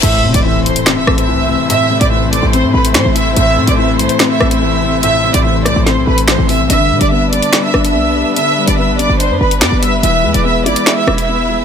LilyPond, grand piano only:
\new Staff \with { instrumentName = "Grand piano" } { \clef bass \time 4/4 \key a \minor \tempo 4 = 144 a,8 c8 e8 a8 c'8 a8 e8 c8 | a,8 c8 e8 a8 c'8 a8 e8 c8 | a,8 c8 e8 a8 c'8 a8 e8 c8 | a,8 c8 e8 a8 c'8 a8 e8 c8 |
d8 g8 b8 d'8 d''8 d'8 b8 g8 | d8 g8 b8 d'8 d''8 d'8 b8 g8 | e8 gis8 b8 e'8 e''8 e'8 b8 gis8 | }